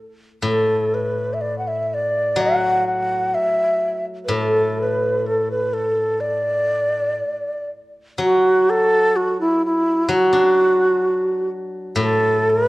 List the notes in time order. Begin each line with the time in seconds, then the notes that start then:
0.43 A2 A4
0.94 B4
1.34 E5
1.41 D5
1.58 F#5
1.68 E5
1.94 D5
2.36 F#3
2.41 F#5
2.87 F#5
3.34 E5
4.25 A2 B4
4.33 A4
4.81 B4
5.26 A4
5.51 B4
5.73 A4
6.20 D5
8.18 F#3
8.23 F#4
8.70 A4
9.16 F#4
9.40 E4
9.65 E4
10.08 F#3
10.12 F#4
10.32 D4
11.96 A2
12.02 A4
12.50 B4